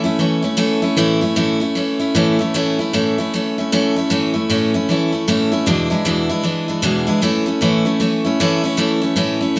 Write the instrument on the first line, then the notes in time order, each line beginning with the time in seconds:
steel-string acoustic guitar
0.04 A3 C#4 E4
0.19 E3 A3 C#4 E4
0.42 A3 C#4 E4
0.57 A2 E3 A3 C#4 E4
0.82 A3 C#4 E4
0.97 A2 E3 A3 C#4 E4
1.21 A3 C#4 E4
1.36 A2 E3 A3 C#4 E4
1.60 A3 C#4 E4
1.75 E3 A3 C#4 E4
2.00 A3 C#4 E4
2.15 A2 E3 A3 C#4 E4
2.39 A3 C#4 E4
2.54 A2 E3 A3 C#4 E4
2.79 A3 C#4 E4
2.93 A2 E3 A3 C#4 E4
3.18 A3 C#4 E4
3.34 E3 A3 C#4 E4
3.58 A3 C#4 E4
3.72 A2 E3 A3 C#4 E4
3.96 A3 C#4 E4
4.10 A2 E3 A3 C#4 E4
4.34 A3 C#4 E4
4.49 A2 E3 A3 C#4 E4
4.74 A3 C#4 E4
4.89 E3 A3 C#4 E4
5.12 A3 C#4 E4
5.28 A2 E3 A3 C#4 E4
5.52 A3 C#4 E4
5.66 E2 B2 E3 G#3 D4 E4
5.90 E3 G#3 D4 E4
6.05 E2 B2 E3 G#3 D4 E4
6.29 E3 G#3 D4 E4
6.43 E3 G#3 D4 E4
6.68 E3 G#3 D4 E4
6.82 E2 B2 E3 G#3 D4 E4
7.07 E3 G#3 D4 E4
7.22 A2 E3 A3 C#4 E4
7.46 A3 C#4 E4
7.61 A2 E3 A3 C#4 E4
7.85 A3 C#4 E4
8.00 E3 A3 C#4 E4
8.25 A3 C#4 E4
8.40 A2 E3 A3 C#4 E4
8.64 A3 C#4 E4
8.77 A2 E3 A3 C#4 E4
9.02 A3 C#4 E4
9.16 A2 E3 A3 C#4 E4
9.41 A3 C#4 E4
9.56 E3 A3